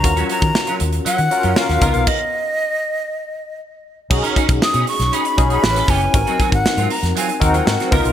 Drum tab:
CC |----------------|x---------------|x---------------|----------------|
HH |xxxx-xxxxxxx-xxx|----------------|-xxx-xoxxxxx-xox|xxxx-xoxxxxx-xox|
SD |----o-------oo--|----------------|----o--o----oo--|----o--o----oo--|
BD |o--o----------o-|o---------------|o-oo------o---o-|o-oo------o---o-|